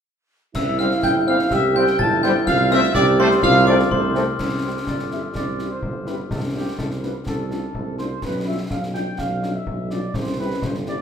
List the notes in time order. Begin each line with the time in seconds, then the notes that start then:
0.55 C2 E4 E5 E6, concert bass drum, snare, crash
0.79 G3 C4 C5 F5 F6, snare
0.91 snare
1.03 G1 G5 G6, concert bass drum, snare
1.26 G3 C4 C5 F5 F6
1.39 snare
1.50 C2 G4 E5 E6, concert bass drum, snare
1.74 G3 C4 C5 G5 G6
1.87 snare
1.98 G1 E4 A5 A6, concert bass drum
2.22 G3 C4 C5 G5 G6, snare
2.46 C2 F4 F5 F6, concert bass drum, snare, crash
2.70 A3 C4 C5 E5 E6, snare
2.83 snare
2.94 C2 G4 D5 D6, concert bass drum, snare
3.19 A3 C4 C5 C6
3.31 snare
3.43 C2 F4 F5 F6, concert bass drum, snare
3.67 A3 C4 C5 D5 D6
3.79 snare
3.91 C2 A3 C5 C6, concert bass drum
4.15 A3 C4 A4 C5, snare
4.39 C2 G4, concert bass drum, snare, crash
4.63 C4 E4 G4 C5
4.87 G1 D5, concert bass drum, snare
4.99 snare
5.11 C4 E4 G4 E5, snare
5.35 C2 D5, concert bass drum, snare
5.59 C4 E4 G4, snare
5.71 C5
5.82 G1, concert bass drum
6.07 C4 E4 G4 B4, snare
6.30 C2 A4, concert bass drum, snare
6.55 A3 D4 F4 G4
6.78 C2 A4, concert bass drum, snare
6.91 snare
7.02 A3 D4 F4 B4, snare
7.26 C2 A4, concert bass drum, snare
7.50 A3 D4 F4, snare
7.75 C2, concert bass drum
7.99 A3 D4 F4 C5, snare
8.22 B1 B4, concert bass drum, snare, crash
8.47 G3 D4 F4 E5
8.71 B1 F5, concert bass drum, snare
8.83 snare
8.94 G3 D4 F4 G5, snare
9.19 B1 F5, concert bass drum, snare
9.43 G3 D4 F4, snare
9.54 E5
9.67 B1, concert bass drum
9.91 G3 D4 F4 D5, snare
10.14 C2 C5, concert bass drum, snare
10.39 G3 E4 G4 B4
10.62 G1 C5, concert bass drum, snare
10.74 snare
10.86 G3 E4 G4 D5, snare